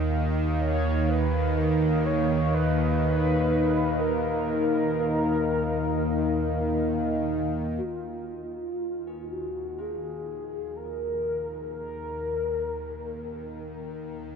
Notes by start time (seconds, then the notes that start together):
Already playing: D#2 D#3 A#3 D#4 D#5 F5
0.60 C#5
1.09 B4
1.58 A#4
2.05 C#5
2.54 B4
4.00 A#4
7.77 F#4
7.85 D#2 D#3 F4
9.07 G#4
9.32 F#4
9.78 F4 G#4
10.76 A#4
11.73 A#4